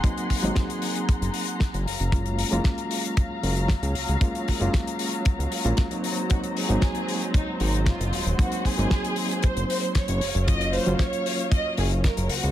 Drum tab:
HH |xxoxxxoxxxoxxxox|xxoxxxoxx-oxxxox|xxoxxxoxxxoxxxox|xxoxxxoxx-oxxxox|
SD |----o-------o---|----o-------o---|----o-------o---|----o-------o---|
BD |o-o-o---o---o---|o---o---o---o---|o-o-o---o---o---|o---o---o---o---|

HH |xxoxxxoxxxoxxxox|xxoxxxoxx-oxxxox|
SD |----o-------o---|----o-------o---|
BD |o-o-o---o---o---|o---o---o---o---|